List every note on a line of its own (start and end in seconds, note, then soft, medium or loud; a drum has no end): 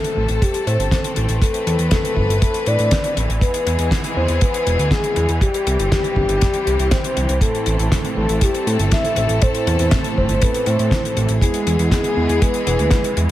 0.00 11.38 E3 medium
0.00 3.38 A3 medium
0.00 3.38 C4 medium
0.00 0.43 A4 loud
0.00 1.40 A4 medium
0.04 closed hi-hat medium
0.17 0.27 A1 medium
0.29 0.40 A1 medium
0.29 closed hi-hat medium
0.42 0.66 G4 loud
0.42 kick loud
0.42 closed hi-hat medium
0.54 closed hi-hat medium
0.67 0.77 A2 medium
0.67 1.13 C5 loud
0.67 closed hi-hat medium
0.79 0.90 G1 medium
0.79 closed hi-hat medium
0.91 kick loud
0.91 snare loud
0.91 closed hi-hat loud
1.04 closed hi-hat medium
1.16 1.27 A1 loud
1.16 closed hi-hat medium
1.29 1.40 A1 medium
1.29 closed hi-hat medium
1.42 1.88 A4 medium
1.42 3.40 B4 medium
1.42 kick loud
1.42 closed hi-hat loud
1.54 closed hi-hat medium
1.67 1.77 E2 medium
1.67 closed hi-hat medium
1.79 1.90 E2 medium
1.79 closed hi-hat medium
1.91 2.38 A4 medium
1.91 kick loud
1.91 snare loud
1.91 closed hi-hat medium
2.05 closed hi-hat medium
2.17 2.27 G1 medium
2.17 kick medium
2.29 2.40 G1 medium
2.29 closed hi-hat medium
2.42 2.68 A4 loud
2.42 kick loud
2.42 closed hi-hat medium
2.54 closed hi-hat medium
2.66 2.78 A2 medium
2.66 3.17 D5 loud
2.66 closed hi-hat medium
2.79 2.90 A2 medium
2.79 closed hi-hat medium
2.91 kick loud
2.91 snare loud
2.91 closed hi-hat loud
3.04 closed hi-hat medium
3.17 3.27 A1 medium
3.17 closed hi-hat medium
3.29 3.40 A1 medium
3.29 closed hi-hat soft
3.41 5.40 G#3 medium
3.41 5.40 B3 medium
3.41 5.40 G#4 medium
3.41 3.88 B4 loud
3.41 kick loud
3.41 closed hi-hat medium
3.54 closed hi-hat medium
3.67 3.77 E2 loud
3.67 closed hi-hat medium
3.79 3.90 E2 medium
3.79 closed hi-hat medium
3.91 kick loud
3.91 snare loud
3.91 closed hi-hat loud
4.04 closed hi-hat medium
4.17 4.27 E2 medium
4.17 4.43 C5 loud
4.28 4.40 E2 medium
4.28 closed hi-hat medium
4.41 4.93 B4 loud
4.41 kick loud
4.41 closed hi-hat medium
4.54 closed hi-hat medium
4.67 4.77 E1 medium
4.67 closed hi-hat medium
4.79 4.90 D2 medium
4.79 closed hi-hat medium
4.91 5.29 G#4 loud
4.91 kick loud
4.91 snare loud
4.91 closed hi-hat medium
5.04 closed hi-hat medium
5.16 5.27 E2 medium
5.16 closed hi-hat medium
5.29 5.40 E2 medium
5.29 closed hi-hat medium
5.41 7.40 G3 medium
5.41 11.38 C4 medium
5.41 5.88 G4 medium
5.41 7.40 G4 medium
5.41 kick loud
5.41 closed hi-hat medium
5.54 closed hi-hat medium
5.67 5.77 C2 medium
5.67 closed hi-hat medium
5.79 5.90 G1 medium
5.79 closed hi-hat medium
5.91 6.15 G4 medium
5.91 kick loud
5.91 snare loud
5.91 closed hi-hat loud
6.04 closed hi-hat medium
6.16 6.27 G1 medium
6.16 6.87 G4 loud
6.16 kick medium
6.29 6.40 G1 medium
6.29 closed hi-hat medium
6.41 kick loud
6.41 snare medium
6.41 closed hi-hat loud
6.54 closed hi-hat medium
6.67 6.77 C2 medium
6.67 closed hi-hat medium
6.79 6.90 C2 medium
6.79 closed hi-hat medium
6.91 7.38 C5 loud
6.91 kick loud
6.91 snare loud
6.91 closed hi-hat loud
7.04 closed hi-hat medium
7.17 7.27 C2 medium
7.17 closed hi-hat medium
7.29 7.40 C2 medium
7.29 closed hi-hat medium
7.41 7.76 A2 medium
7.41 11.38 A3 medium
7.41 7.76 A3 medium
7.41 7.76 C4 medium
7.41 7.76 E4 medium
7.41 7.88 A4 medium
7.41 11.38 A4 medium
7.41 7.76 A4 medium
7.41 kick loud
7.41 closed hi-hat loud
7.55 closed hi-hat soft
7.66 7.77 A1 medium
7.66 closed hi-hat medium
7.79 7.90 A1 medium
7.79 9.14 A2 medium
7.79 9.14 A3 medium
7.79 9.14 C4 medium
7.79 9.14 E4 medium
7.79 9.14 A4 medium
7.79 closed hi-hat medium
7.92 kick loud
7.92 snare loud
7.92 closed hi-hat loud
8.05 closed hi-hat soft
8.17 8.27 A1 medium
8.17 8.44 A4 medium
8.29 8.40 A1 medium
8.29 closed hi-hat medium
8.41 8.67 G4 loud
8.41 kick loud
8.41 closed hi-hat loud
8.55 closed hi-hat medium
8.67 8.77 A2 loud
8.67 8.78 A4 medium
8.67 closed hi-hat medium
8.79 8.90 G1 medium
8.79 closed hi-hat medium
8.91 9.44 E5 loud
8.91 kick loud
8.91 snare loud
8.91 closed hi-hat medium
9.05 closed hi-hat medium
9.16 9.28 A1 medium
9.16 9.39 A2 medium
9.16 9.39 A3 medium
9.16 9.39 C4 medium
9.16 9.39 E4 medium
9.16 9.39 A4 medium
9.16 closed hi-hat medium
9.29 9.40 A1 medium
9.29 closed hi-hat medium
9.42 9.76 A2 medium
9.42 9.76 A3 medium
9.42 9.76 C4 medium
9.42 9.76 E4 medium
9.42 9.76 A4 loud
9.42 9.92 C5 loud
9.42 kick loud
9.42 closed hi-hat medium
9.55 closed hi-hat medium
9.67 9.77 E2 loud
9.67 closed hi-hat medium
9.79 9.90 E2 medium
9.79 11.14 A2 medium
9.79 11.14 A3 medium
9.79 11.14 C4 medium
9.79 11.14 E4 medium
9.79 11.14 A4 medium
9.79 closed hi-hat medium
9.91 kick loud
9.91 snare loud
9.91 closed hi-hat medium
10.04 closed hi-hat medium
10.17 10.28 G1 medium
10.17 10.44 C5 loud
10.17 kick medium
10.29 10.40 G1 medium
10.29 closed hi-hat medium
10.42 10.68 B4 loud
10.42 kick loud
10.42 closed hi-hat medium
10.54 closed hi-hat medium
10.66 10.77 A2 medium
10.66 11.17 C5 loud
10.66 closed hi-hat medium
10.79 10.90 A2 medium
10.79 closed hi-hat medium
10.91 kick loud
10.91 snare loud
10.91 closed hi-hat medium
11.05 closed hi-hat medium
11.17 11.27 A1 medium
11.17 11.39 A3 medium
11.17 11.39 C4 medium
11.17 11.39 E4 medium
11.17 11.39 A4 medium
11.17 closed hi-hat medium
11.29 11.40 A1 medium
11.29 closed hi-hat medium
11.41 13.31 E3 medium
11.41 11.76 G#3 medium
11.41 13.31 G#3 medium
11.41 11.76 B3 medium
11.41 13.31 B3 medium
11.41 11.76 E4 medium
11.41 11.76 G#4 loud
11.41 13.31 G#4 medium
11.41 11.88 G#4 medium
11.41 kick loud
11.41 closed hi-hat medium
11.54 closed hi-hat medium
11.67 11.77 E2 medium
11.67 closed hi-hat medium
11.79 11.90 E2 medium
11.79 13.14 G#3 medium
11.79 13.14 B3 medium
11.79 13.14 E4 medium
11.79 13.14 G#4 medium
11.79 closed hi-hat medium
11.91 12.43 G#4 loud
11.91 kick loud
11.91 snare loud
11.91 closed hi-hat loud
12.04 closed hi-hat medium
12.17 12.27 E2 medium
12.29 12.40 E2 medium
12.29 closed hi-hat soft
12.42 12.66 B4 loud
12.42 kick loud
12.42 closed hi-hat medium
12.54 closed hi-hat medium
12.67 12.78 E1 medium
12.67 13.13 B4 loud
12.67 closed hi-hat medium
12.79 12.90 D2 medium
12.79 closed hi-hat medium
12.91 kick loud
12.91 snare loud
12.91 closed hi-hat medium
13.04 closed hi-hat medium
13.17 13.27 E2 medium
13.17 13.31 G#3 medium
13.17 13.31 B3 medium
13.17 13.31 E4 medium
13.17 13.31 G#4 medium
13.17 closed hi-hat medium